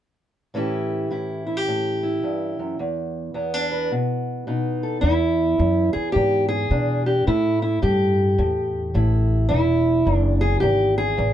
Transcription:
0.54 A2 E3 C#4 E4 G4
1.11 A2 E4
1.47 E4
1.57 G4
1.68 A2
2.03 E4
2.23 G2
2.59 F#2
2.79 E2
3.34 E2 B3
3.54 D4
3.72 B4
3.91 B2
4.47 B2 D#4
4.83 A4
5.01 E2 E4
5.58 E2 F#2
5.93 G#4, muted upright bass stroke
6.12 E2 G#2 G4
6.48 G#4
6.70 E2 B2 D4
7.06 G4
7.27 A2 E4
7.62 E4
7.82 G2 A2 G4
8.38 E2 A2
8.94 A1 A2 E4
9.49 E1 E2 E4
10.05 F#1 E2
10.16 D4
10.41 G#4
10.60 G#1 E2 G4
10.98 G#4
11.17 A1 E2

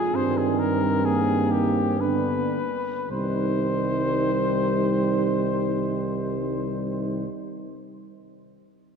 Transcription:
Already playing: F4 G#4
0.14 G2 D#3 G3 C4 C5
0.38 G#4
0.60 A#4
1.02 D#3 A#3 G#4
1.52 G4
1.98 D3 B3 D4 B4
3.10 C2 D#3 G3 D#4 C5

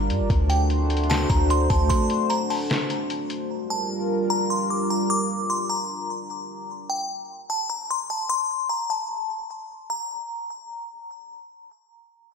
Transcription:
Already playing: G1 G3 D4 F4 A#4 A#5, downlifter
0.10 G2, closed hi-hat
0.20 G1
0.30 D2 A3 F#4 C5, kick, closed hi-hat
0.50 G5, closed hi-hat
0.70 closed hi-hat
0.90 closed hi-hat
0.97 closed hi-hat
1.03 closed hi-hat
1.10 A5, snare, closed hi-hat
1.30 D2 A#5, kick, closed hi-hat
1.50 C6, closed hi-hat
1.70 D2 A5, kick, closed hi-hat
1.89 C6, kick, closed hi-hat
2.10 closed hi-hat
2.30 A#5, closed hi-hat
2.50 A5, open hi-hat
2.70 snare, closed hi-hat
2.90 closed hi-hat
3.10 closed hi-hat
3.30 closed hi-hat
3.50 G3 F4 A#4
3.70 A5
4.30 A#5
4.50 C6
4.70 D6
4.90 A#5
5.10 D6
5.50 C6
5.70 A#5
6.90 G5
7.50 A5
7.70 A#5
7.91 C6
8.10 A5
8.29 C6
8.69 A#5
8.90 A5
9.90 A#5

